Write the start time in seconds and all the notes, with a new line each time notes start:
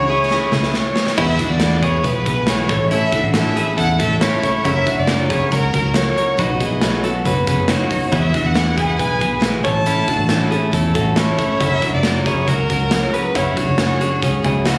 Already playing: C#2 C#5
0.08 C#4 E4 G#4
0.30 E3 C#4 E4 G#4, snare
0.51 C#2 C#4 E4 G#4, snare
0.63 snare
0.74 C#5, snare
0.96 snare
1.07 snare
1.17 E2 E3 G#3 B3 E4 G#4 B4 E5, kick, crash
1.39 B3 D4 E4 F#4 G#4, kick, closed hi-hat
1.50 E2 D5
1.60 E3 G#3 B3 E4 G#4, snare, closed hi-hat
1.83 B3 E4 G#4 C#5, kick, closed hi-hat
2.04 B1 G#3 B3 E4 G#4 B4, kick, closed hi-hat
2.26 B1 B3 E4 G#4 B4, kick, closed hi-hat
2.47 E3 G#3 B3 E4 G#4 C#5, snare, closed hi-hat
2.69 A1 A3 C#4 E4 A4 C#5, kick, closed hi-hat
2.90 A2 E3 A3 C#4 E4 A4 E5, closed hi-hat
3.12 A3 C#4 D4 E4 F#4 A4, kick, closed hi-hat
3.23 A1
3.34 A2 E3 A3 C#4 E4 A4 E5, snare, closed hi-hat
3.56 A3 C#4 E4 G#4 A4, closed hi-hat
3.78 E2 A3 C#4 E4 A4 F#5, kick, closed hi-hat
4.00 A1 A3 C#4 E4 F#4 A4 E5, kick, closed hi-hat
4.21 A2 E3 A3 C#4 E4 A4 C#5, snare, closed hi-hat
4.42 A3 C#4 E4 A4, kick, closed hi-hat
4.64 F#1 F#2 C#3 F#3 C#4 E4 F#4 A#4 E5, kick, closed hi-hat
4.85 F#3 C#4 D4 F#4 A#4, kick, closed hi-hat
4.98 F#1 D5
5.07 F#2 C#3 F#3 C#4 F#4 A#4, snare, closed hi-hat
5.29 F#3 C#4 E4 F#4 G#4 A#4 C#5, kick, closed hi-hat
5.51 C#2 F#3 C#4 F#4 A#4, kick, closed hi-hat
5.73 C#2 F#3 C#4 F#4 A#4, kick, closed hi-hat
5.94 F#2 C#3 F#3 C#4 F#4 A#4 C#5, snare, closed hi-hat
6.16 F#3 C#4 F#4 A#4 C#5, closed hi-hat
6.37 B1 B2 D#3 F#3 B3 C#4 D#4 F#4 B4 C#5 D#5, kick, closed hi-hat
6.60 F#3 B3 C#4 E4 F#4 G#4, kick, closed hi-hat
6.71 B1
6.81 B2 D#3 F#3 B3 C#4 F#4, snare, closed hi-hat
7.04 F#3 B3 C#4 F#4 A4, closed hi-hat
7.25 F#1 F#3 B3 C#4 F#4 B4, kick, closed hi-hat
7.47 F#1 F#3 B3 C#4 F#4 G#4 B4, kick, closed hi-hat
7.68 B2 D#3 F#3 B3 C#4 D#4 F#4, snare, closed hi-hat
7.73 C#5
7.90 F#3 B3 C#4 D#4 F#4, kick, open hi-hat
8.11 E2 E3 G#3 B3 E4 G#4 B4 E5, kick, closed hi-hat
8.32 B3 D4 E4 F#4 G#4, kick, closed hi-hat
8.45 E2 F#5
8.54 E3 G#3 B3 E4 G#4, snare, closed hi-hat
8.75 B3 E4 G#4 G#5, kick, closed hi-hat
8.88 F#5
8.97 B1 G#3 B3 E4 G#4 B4 G#5, kick, closed hi-hat
9.19 B1 B3 E4 G#4 B4, kick, closed hi-hat
9.40 E3 G#3 B3 E4 G#4, snare, closed hi-hat
9.63 A1 A3 C#4 E4 A4 C#5 A5, kick, closed hi-hat
9.86 A2 E3 A3 C#4 E4 A4, closed hi-hat
10.06 A3 C#4 D4 E4 F#4 A4, kick, closed hi-hat
10.19 A1
10.29 A2 E3 A3 C#4 E4 A4, snare, closed hi-hat
10.50 A3 C#4 E4 G#4 A4, closed hi-hat
10.72 E2 A3 C#4 E4 A4, kick, closed hi-hat
10.94 A1 A3 C#4 E4 F#4 A4, kick, closed hi-hat
11.16 A2 E3 A3 C#4 E4 A4 C#5, snare, closed hi-hat
11.38 A3 C#4 E4 A4, kick, closed hi-hat
11.60 F#1 F#2 C#3 F#3 C#4 E4 F#4 A#4 E5, kick, closed hi-hat
11.82 F#3 C#4 D4 F#4 A#4, kick, closed hi-hat
11.93 F#1 D5
12.03 F#2 C#3 F#3 C#4 F#4 A#4, snare, closed hi-hat
12.26 F#3 C#4 E4 F#4 G#4 A#4 C#5, kick, closed hi-hat
12.47 C#2 F#3 C#4 F#4 A#4, kick, closed hi-hat
12.69 C#2 F#3 C#4 F#4 A#4, kick, closed hi-hat
12.91 F#2 C#3 F#3 C#4 F#4 A#4, snare, closed hi-hat
13.12 F#3 C#4 F#4 G#4 A#4 B4, closed hi-hat
13.35 F#1 F#2 C#3 F#3 C#4 E4 F#4 G#4 C#5, kick, closed hi-hat
13.57 F#3 C#4 D4 F#4 G#4, kick, closed hi-hat
13.68 F#1
13.78 F#2 C#3 F#3 C#4 F#4 G#4, snare, closed hi-hat
14.00 F#3 C#4 D4 F#4 G#4, closed hi-hat
14.21 C#2 F#3 C#4 F#4 G#4, kick, closed hi-hat
14.42 C#2 F#3 C#4 E4 F#4 G#4 C#5 G#5, kick, closed hi-hat
14.65 F#2 C#3 F#3 C#4 F#4 G#4 F#5, snare, closed hi-hat